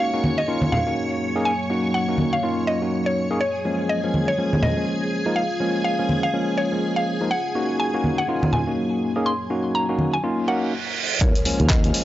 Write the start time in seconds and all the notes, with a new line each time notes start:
Already playing: F#3 A#3 C#4 D#4 F#4 G#4 C#5 C#6
0.00 F5
0.13 A#3 C#4 D#4 F#4
0.24 high conga
0.38 D#5
0.48 A#3 C#4 D#4 F4
0.62 high conga
0.72 F5, low conga
0.87 A#3 C#4 D#4 F#4
1.35 A#3 C#4 D#4 G#4
1.45 G#5
1.70 A#3 C#4 D#4 F#4
1.94 F#5
2.09 A#3 C#4 D#4 F#4
2.18 high conga
2.33 F5
2.43 A#3 C#4 D#4 F4
2.67 D#5
2.82 A#3 C#4 D#4 F#4
3.06 C#5
3.30 A#3 C#4 D#4 G#4
3.41 C#4 F4 G#4 C#5 D#5 G#5
3.65 F3 G#3 A#3 C#4
3.89 D#5
4.04 F3 G#3 A#3 C#4
4.14 high conga
4.28 C#5
4.38 F3 G#3 A#3 C#4
4.53 high conga
4.63 D#5, low conga
4.77 F3 G#3 A#3 C#4
5.26 F3 G#3 A#3 D#4
5.36 F5
5.60 F3 G#3 A#3 C#4
5.84 F5
5.99 F3 G#3 A#3 C#4
6.09 high conga
6.23 F5
6.33 F3 G#3 A#3 C#4
6.58 C#5
6.72 F3 G#3 A#3 C#4
6.96 F5
7.21 F3 G#3 A#3 D#4
7.31 F#3 A#3 C#5 F#5
7.55 A#3 C#4 D#4 F#4
7.80 G#5
7.94 A#3 C#4 D#4 F#4
8.04 high conga
8.18 F#5
8.28 A#3 C#4 D#4 F4
8.43 high conga
8.53 G#5, low conga
8.67 A#3 C#4 D#4 F#4
9.16 A#3 C#4 D#4 G#4
9.26 C6
9.50 A#3 C#4 D#4 F#4
9.75 A#5
9.89 A#3 C#4 D#4 F#4
9.99 high conga
10.13 G#5
10.23 A#3 C#4 D#4 F4, reverse cymbal
10.48 A#3 C#4 D#4 F#4 F#5
11.21 D#2 G#3 D#4 F4 G#4 A#4 C#5 F6, kick, closed hi-hat, impact
11.35 closed hi-hat
11.45 F3 G#3 A#3 C#4, open hi-hat
11.60 D#2, closed hi-hat
11.70 A#4 D#5, kick, clap, closed hi-hat
11.84 F3 G#3 A#3 C#4, closed hi-hat
11.94 open hi-hat